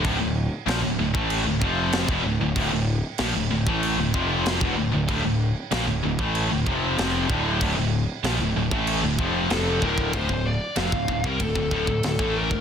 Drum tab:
CC |x---x---x---x---|x---x---x---x---|x---x---x---x---|x---x---x---x---|
RD |----------------|----------------|----------------|----------------|
SD |----o-------o---|----o-------o---|----o-------o---|----o-------o---|
BD |o------o--o--o--|o------o--o--o--|o------o--o---o-|o------o--o---oo|

CC |----------------|
RD |b---b---b---b---|
SD |----o-------o---|
BD |oo---ooooooo-o-o|